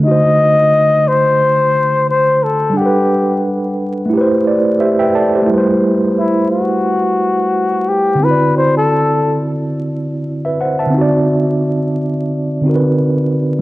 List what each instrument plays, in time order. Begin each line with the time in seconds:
Already playing: tine electric piano D3
0.00 tine electric piano A3 D#4
0.06 tine electric piano F#4, flugelhorn D#5
0.11 tine electric piano C5
1.08 flugelhorn C5
2.10 flugelhorn C5
2.43 flugelhorn A4
2.70 tine electric piano G3 D4
2.77 flugelhorn G4, tine electric piano F#5
2.81 tine electric piano A4
2.86 tine electric piano B4
4.05 tine electric piano A3 E4
4.13 tine electric piano G4
4.17 tine electric piano B4 C5
4.47 tine electric piano D5
4.80 tine electric piano G4 C5 E5
4.99 tine electric piano B4 E5 G5
5.15 tine electric piano A4 D5 A5
5.35 tine electric piano G4 C5
5.42 tine electric piano A3
5.46 tine electric piano G3 E4
5.54 tine electric piano B4
5.58 tine electric piano C5
6.18 flugelhorn E4
6.51 flugelhorn F#4
7.89 flugelhorn G4
8.15 tine electric piano D3
8.19 tine electric piano C4 E4
8.24 tine electric piano F#4, flugelhorn B4
8.31 tine electric piano D5
8.57 flugelhorn C5
8.77 flugelhorn A4
10.45 tine electric piano B4 E5
10.61 tine electric piano C5 F#5
10.79 tine electric piano E5 A5
10.86 tine electric piano D3 C4
10.94 tine electric piano D#4 F#4
11.01 tine electric piano D5
12.61 tine electric piano D3 C4
12.65 tine electric piano D#4 F#4 A#4
12.75 tine electric piano B4